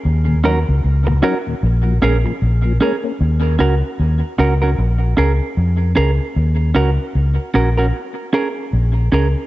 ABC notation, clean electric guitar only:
X:1
M:4/4
L:1/16
Q:"Swing 16ths" 1/4=76
K:Ebm
V:1 name="Clean electric guitar"
z2 [DGB] z3 [DGB] z3 [DAB] z3 [DAB] z | z2 [DGB] z3 [DGB] [DGB] z2 [DAB] z3 [DAB] z | z2 [DGB] z3 [DGB] [DGB] z2 [DAB] z3 [DAB] z |]